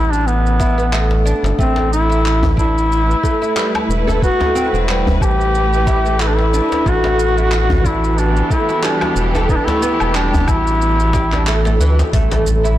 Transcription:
0.00 1.33 A1 medium
0.00 0.14 E4 loud
0.12 0.28 D4 medium
0.12 shaker soft
0.27 1.26 B3 medium
0.27 shaker soft
0.46 shaker soft
0.60 0.77 E4 medium
0.60 kick loud
0.60 djembe slap medium
0.60 shaker medium
0.78 0.91 B3 medium
0.78 shaker soft
0.92 1.24 A3 medium
0.92 clap loud
0.92 shaker soft
1.11 djembe slap soft
1.25 1.57 D4 medium
1.25 shaker medium
1.43 1.53 G1 loud
1.43 djembe slap medium
1.43 shaker soft
1.59 3.15 A1 medium
1.59 1.76 A3 medium
1.59 6.86 A3 medium
1.59 1.90 C4 loud
1.59 kick loud
1.59 shaker soft
1.66 8.00 E4 medium
1.76 2.08 A3 medium
1.76 djembe slap medium
1.92 2.54 E4 loud
1.92 shaker medium
2.10 2.24 E4 medium
2.10 shaker soft
2.26 clap medium
2.26 shaker soft
2.43 8.98 B4 medium
2.43 djembe bass medium
2.57 2.75 D4 medium
2.57 3.86 E4 loud
2.57 kick medium
2.57 shaker medium
2.78 shaker soft
2.92 shaker soft
3.11 shaker soft
3.23 3.41 A3 medium
3.23 kick medium
3.23 shaker medium
3.42 3.56 E4 medium
3.42 shaker soft
3.56 3.74 G3 medium
3.56 clap medium
3.56 shaker soft
3.75 djembe slap soft
3.75 low woodblock medium
3.89 4.30 E1 medium
3.89 shaker medium
4.07 4.21 A4 medium
4.07 djembe tone medium
4.07 shaker soft
4.22 4.39 B3 medium
4.22 4.84 F#4 loud
4.22 kick loud
4.22 shaker soft
4.40 4.54 A3 medium
4.40 djembe slap medium
4.40 djembe bass medium
4.55 4.66 C4 loud
4.55 djembe tone soft
4.55 shaker medium
4.73 5.23 E1 medium
4.73 4.87 C4 medium
4.73 shaker soft
4.89 5.06 G3 medium
4.89 clap medium
4.89 shaker soft
5.07 djembe bass medium
5.21 6.61 A1 medium
5.21 6.23 G4 loud
5.21 kick loud
5.21 low woodblock medium
5.21 shaker medium
5.41 shaker soft
5.55 shaker soft
5.73 shaker soft
5.87 6.05 E4 medium
5.87 kick loud
5.87 djembe slap medium
5.87 shaker medium
6.06 6.14 A3 medium
6.06 shaker soft
6.20 6.52 A3 medium
6.20 6.30 E4 medium
6.20 clap medium
6.20 shaker soft
6.28 6.39 D4 medium
6.37 6.89 E4 loud
6.37 djembe slap soft
6.53 6.85 D4 medium
6.53 shaker medium
6.72 djembe slap medium
6.72 shaker soft
6.86 8.42 A1 loud
6.86 12.14 E3 medium
6.86 7.03 A3 medium
6.86 7.88 F#4 loud
6.86 kick loud
6.86 shaker soft
7.04 7.36 A3 medium
7.04 djembe slap medium
7.19 12.13 B3 medium
7.19 shaker medium
7.37 7.51 E4 medium
7.37 12.13 F#4 medium
7.37 shaker soft
7.52 clap medium
7.52 shaker soft
7.70 djembe bass medium
7.85 8.02 D4 medium
7.85 8.21 E4 loud
7.85 kick medium
7.85 shaker medium
8.04 shaker soft
8.15 12.13 G4 medium
8.15 shaker soft
8.19 8.51 D4 medium
8.36 shaker soft
8.50 8.68 A3 medium
8.50 8.87 E4 medium
8.50 kick loud
8.50 shaker medium
8.69 8.83 E4 medium
8.69 shaker soft
8.83 9.01 G3 medium
8.83 9.24 D4 medium
8.83 clap loud
8.83 shaker soft
9.01 djembe slap medium
9.01 low woodblock medium
9.16 9.57 E1 medium
9.16 shaker medium
9.35 9.48 A4 medium
9.35 djembe tone medium
9.35 shaker soft
9.49 9.66 B3 medium
9.49 9.58 E4 loud
9.49 kick loud
9.49 shaker soft
9.56 9.67 D4 medium
9.66 9.81 A3 loud
9.66 10.17 E4 loud
9.66 djembe slap medium
9.66 djembe bass medium
9.66 shaker soft
9.82 9.93 B3 loud
9.82 djembe tone soft
9.82 shaker medium
10.00 10.49 E1 medium
10.00 10.14 B3 medium
10.00 low woodblock medium
10.00 shaker soft
10.15 10.33 G3 medium
10.15 10.51 D4 medium
10.15 clap medium
10.15 shaker soft
10.34 djembe bass medium
10.34 shaker soft
10.48 11.80 A1 medium
10.48 11.81 E4 loud
10.48 kick loud
10.48 low woodblock medium
10.48 shaker medium
10.67 shaker soft
10.82 shaker soft
11.00 shaker soft
11.13 11.25 G4 medium
11.13 kick loud
11.13 djembe slap medium
11.13 shaker medium
11.32 11.46 D4 medium
11.32 clap soft
11.32 djembe tone medium
11.32 shaker soft
11.47 11.58 A3 medium
11.47 clap loud
11.47 shaker soft
11.65 11.74 A3 medium
11.65 djembe slap soft
11.65 shaker soft
11.80 12.03 D2 medium
11.80 11.97 E3 loud
11.80 shaker medium
11.99 djembe slap medium
11.99 shaker soft
12.13 12.78 A1 loud
12.13 12.30 A3 loud
12.13 kick loud
12.13 open hi-hat medium
12.13 impact medium
12.13 shaker soft
12.31 12.63 A3 medium
12.31 open hi-hat soft
12.31 djembe slap medium
12.31 shaker soft
12.46 djembe tone soft
12.46 shaker medium
12.64 12.78 E4 medium
12.64 shaker soft

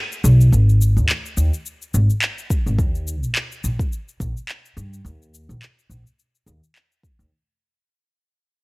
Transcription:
0.12 shaker soft
0.24 0.46 B1 loud
0.24 shaker medium
0.41 shaker soft
0.52 0.98 G#1 medium
0.52 shaker soft
0.69 shaker soft
0.82 shaker medium
0.97 1.06 D#2 medium
0.97 shaker soft
1.09 clap medium
1.09 shaker soft
1.26 shaker soft
1.37 1.49 D#2 medium
1.37 shaker medium
1.54 shaker soft
1.66 shaker soft
1.82 shaker soft
1.94 2.06 G#1 medium
1.94 shaker medium
2.10 shaker soft
2.22 clap medium
2.22 shaker soft
2.38 shaker soft
2.50 kick loud
2.50 shaker medium
2.66 2.76 G#1 medium
2.66 shaker soft
2.79 3.23 D#2 medium
2.79 kick loud
2.79 shaker soft
2.95 shaker soft
3.08 shaker medium
3.23 3.32 A#1 medium
3.23 shaker soft
3.35 clap medium
3.35 shaker soft
3.52 shaker soft
3.64 3.76 A#1 medium
3.64 shaker medium
3.79 kick loud
3.79 shaker soft
3.93 shaker soft
4.09 shaker soft
4.20 4.32 A#1 medium
4.20 kick loud
4.20 shaker medium
4.37 shaker soft
4.49 clap medium
4.49 shaker soft
4.66 shaker soft
4.77 4.99 G2 medium
4.77 shaker medium
4.94 shaker soft
5.05 5.51 D#2 medium
5.05 shaker soft
5.22 shaker soft
5.34 shaker medium
5.49 5.58 A#1 medium
5.49 shaker soft
5.62 clap medium
5.62 shaker soft
5.79 shaker soft
5.90 6.02 A#1 medium
5.90 shaker medium
6.07 shaker soft
6.19 shaker soft
6.35 shaker soft
6.46 6.58 D#2 medium
6.46 shaker medium
6.64 shaker soft
6.76 clap medium
6.76 shaker soft
6.92 shaker soft
7.03 kick loud
7.03 shaker medium
7.19 7.28 D#2 medium
7.19 shaker soft

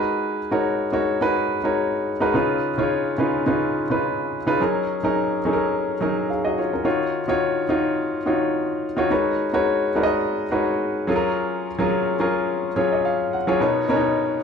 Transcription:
0.00 0.39 G#3 medium
0.00 0.39 D#4 medium
0.00 0.39 F#4 medium
0.00 0.39 A#4 medium
0.00 0.39 B4 loud
0.51 0.86 G#3 medium
0.51 0.86 D#4 medium
0.51 0.86 F#4 medium
0.51 0.87 A#4 medium
0.51 0.87 C#5 medium
0.92 1.17 G#3 medium
0.92 1.17 D#4 medium
0.92 1.17 F#4 medium
0.92 1.17 A#4 medium
0.92 1.17 C#5 medium
1.20 1.56 G#3 medium
1.20 1.57 D#4 medium
1.20 1.57 F#4 medium
1.20 1.57 A#4 medium
1.20 1.57 B4 loud
1.63 2.10 G#3 medium
1.63 2.11 D#4 medium
1.63 2.11 F#4 medium
1.63 2.11 A#4 medium
1.63 2.11 C#5 medium
2.20 2.32 G#3 medium
2.20 2.32 D#4 medium
2.20 2.32 F#4 medium
2.20 2.32 A#4 medium
2.20 2.32 B4 medium
2.34 2.70 C#3 medium
2.34 2.70 C#4 medium
2.34 2.70 D#4 medium
2.34 2.70 F4 medium
2.34 2.70 B4 medium
2.78 3.12 C#3 medium
2.78 3.12 C#4 medium
2.78 3.13 D#4 medium
2.78 3.13 F4 medium
2.78 3.13 C#5 medium
3.18 3.42 C#3 medium
3.18 3.42 C#4 medium
3.18 3.43 D#4 medium
3.18 3.43 F4 medium
3.18 3.43 B4 medium
3.46 3.82 C#3 medium
3.46 3.82 C#4 medium
3.46 3.82 D#4 medium
3.46 3.83 F4 medium
3.46 3.83 B4 medium
3.90 4.36 C#3 medium
3.90 4.36 C#4 medium
3.90 4.37 D#4 medium
3.90 4.37 F4 medium
3.90 4.37 B4 medium
4.46 4.57 C#3 medium
4.46 4.58 C#4 medium
4.46 4.58 D#4 medium
4.46 4.58 F4 medium
4.46 4.58 B4 loud
4.60 4.96 F#3 medium
4.60 4.96 C#4 medium
4.60 4.96 D#4 medium
4.60 4.96 G#4 medium
4.60 4.96 A#4 medium
5.03 5.38 F#3 medium
5.03 5.38 C#4 medium
5.03 5.38 D#4 medium
5.03 5.38 G#4 medium
5.03 5.39 A#4 medium
5.45 5.92 F#3 medium
5.45 5.92 C#4 medium
5.45 5.92 D#4 medium
5.45 5.93 G#4 medium
5.45 5.52 A4 medium
5.53 5.96 A#4 medium
6.01 6.59 F#3 medium
6.01 6.29 C#4 medium
6.01 6.29 D#4 medium
6.01 6.29 G#4 medium
6.01 6.30 A#4 medium
6.30 6.44 G#4 medium
6.30 6.44 F5 medium
6.45 6.57 F#4 medium
6.45 6.57 D#5 medium
6.58 6.72 F4 medium
6.58 6.72 C#5 medium
6.73 6.99 C#4 medium
6.73 6.99 A#4 medium
6.84 7.20 D#3 medium
6.84 7.21 D#4 medium
6.84 7.21 F4 medium
6.84 7.21 F#4 medium
6.84 7.21 C#5 medium
7.28 7.63 D#3 medium
7.28 7.63 D#4 medium
7.28 7.63 F4 medium
7.28 7.63 F#4 medium
7.28 7.64 C#5 loud
7.69 8.17 D#3 medium
7.69 8.17 D#4 medium
7.69 8.17 F4 medium
7.69 8.17 F#4 medium
7.69 8.17 C#5 medium
8.26 8.85 D#3 medium
8.26 8.85 D#4 medium
8.26 8.85 F4 medium
8.26 8.85 F#4 medium
8.26 8.85 C#5 medium
8.96 9.08 D#3 medium
8.96 9.08 D#4 medium
8.96 9.08 F4 medium
8.96 9.09 F#4 medium
8.96 9.09 C#5 medium
9.10 9.46 G#3 medium
9.10 9.46 D#4 medium
9.10 9.46 F#4 medium
9.10 9.46 A#4 medium
9.10 9.47 B4 medium
9.10 9.47 C#5 medium
9.53 9.88 G#3 medium
9.53 9.88 D#4 medium
9.53 9.88 F#4 medium
9.53 9.88 A#4 medium
9.53 9.88 B4 medium
9.53 9.89 C#5 loud
9.95 10.42 G#3 medium
9.95 10.43 D#4 medium
9.95 10.43 F#4 medium
9.95 10.43 A#4 medium
9.95 10.43 B4 medium
9.95 10.03 D5 medium
10.03 10.47 D#5 loud
10.51 11.07 G#3 medium
10.51 11.07 D#4 medium
10.51 11.08 F#4 medium
10.51 11.08 A#4 medium
10.51 11.08 B4 medium
10.51 11.08 C#5 medium
11.07 11.66 F#3 medium
11.07 11.66 C#4 medium
11.07 11.67 F4 medium
11.07 11.67 G#4 medium
11.07 11.15 A4 medium
11.16 11.70 A#4 loud
11.78 12.13 F#3 medium
11.78 12.13 C#4 medium
11.78 12.14 F4 medium
11.78 12.14 G#4 medium
11.78 12.14 A#4 medium
12.19 12.67 F#3 medium
12.19 12.67 C#4 medium
12.19 12.67 F4 medium
12.19 12.68 G#4 medium
12.19 12.68 A#4 medium
12.76 13.35 F#3 medium
12.76 13.35 C#4 medium
12.76 13.35 F4 medium
12.76 13.35 G#4 medium
12.76 13.36 C#5 medium
12.93 13.04 D#5 medium
13.05 13.31 F5 medium
13.33 13.59 F#5 medium
13.47 13.58 F#3 medium
13.47 13.59 C#4 medium
13.47 13.58 F4 medium
13.47 13.59 G#4 medium
13.47 13.59 C#5 loud
13.60 13.84 B2 medium
13.60 13.84 B3 medium
13.60 13.85 D#4 medium
13.60 13.84 A#4 medium
13.60 13.85 C#5 medium
13.89 14.36 B2 medium
13.89 14.36 B3 medium
13.89 13.96 C#4 medium
13.89 14.36 A#4 medium
13.89 14.37 C#5 loud
13.96 14.40 D#4 medium

